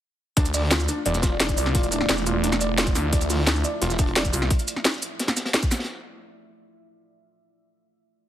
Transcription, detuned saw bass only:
0.37 D2
1.06 E1
1.57 C2
1.75 E1
2.09 E1
2.44 E1
2.95 D2
3.13 D2
3.82 E1
4.33 C2

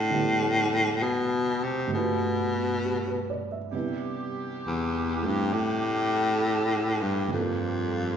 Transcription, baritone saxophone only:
Already playing: A2
1.03 B2
1.63 C3
1.93 B2
4.66 E2
5.26 G2
5.53 A2
7.01 G2
7.32 F2

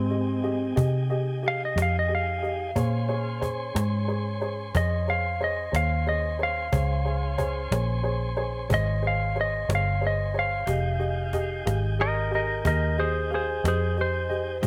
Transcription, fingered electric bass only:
Already playing: G#2
0.77 C3
1.76 F2
2.76 A#2
3.75 G#2
4.75 F2
5.73 D#2
6.73 C#2
7.71 A#1
8.70 G#1
9.69 G1
10.67 F1
11.67 G#1
12.65 D#2
13.64 F2
14.63 G#2

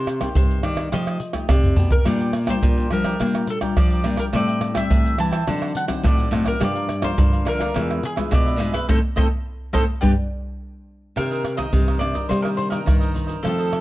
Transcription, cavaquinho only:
2.05 D4 A#4 D5 G5
2.21 A#4 D5 G5
2.33 muted cavaquinho stroke
2.48 A#4 D5 G5
2.77 A#4 D5 G5
3.04 A#4 D5 G5
3.20 D4 A#4 D5 G5
3.34 A#4 D5 G5
3.48 muted cavaquinho stroke
3.61 A#4 D5 G5
3.77 D4 A#4 D5 G5
3.91 A#4 D5 G5
4.04 D4 A#4 D5 G5
4.18 A#4 D5 G5
4.33 A4 C5 E5 G5
4.48 C5 E5 G5
4.61 muted cavaquinho stroke
4.74 C5 E5 G5
5.04 C5 E5 G5
5.31 C5 E5 G5
5.46 D4 C5 D5 F#5
5.61 C5 D5 F#5
5.74 muted cavaquinho stroke
5.88 C5 D5 F#5
6.03 D4 C5 D5 F#5
6.17 C5 D5 F#5
6.31 D4 C5 D5 F#5
6.44 C5 D5 F#5
6.60 G4 A#4 D5 F5
6.75 A#4 D5 F5
6.88 muted cavaquinho stroke
7.02 A#4 D5 F5
7.32 A#4 D5 F5
7.59 A#4 D5 F5
7.75 D4 G#4 B4 E5
7.89 G#4 B4 E5
8.03 muted cavaquinho stroke
8.16 G#4 B4 E5
8.31 D4 G#4 B4 E5
8.46 G#4 B4 E5
8.59 D4 G#4 B4 E5
8.73 G#4 B4 E5
8.89 A4 C5 D#5
9.16 A4 C5 D#5
9.74 A4 C5 D#5
10.03 G4 B4 D5
11.17 D#4 A#4 C5 D#5
11.31 A#4 C5 D#5
11.44 muted cavaquinho stroke
11.57 A#4 C5 D#5
11.72 D#4 A#4 C5 D#5
11.88 A#4 C5 D#5
12.01 muted cavaquinho stroke
12.14 A#4 C5 D#5
12.29 D#4 A#4 C5 D#5
12.43 A#4 C5 D#5
12.70 A#4 C5 D#5
13.00 A#4 C5 D#5
13.14 D#4 A#4 C5 D#5
13.27 A#4 C5 D#5
13.43 F4 A4 C5 D#5
13.58 A4 C5 D#5
13.71 muted cavaquinho stroke

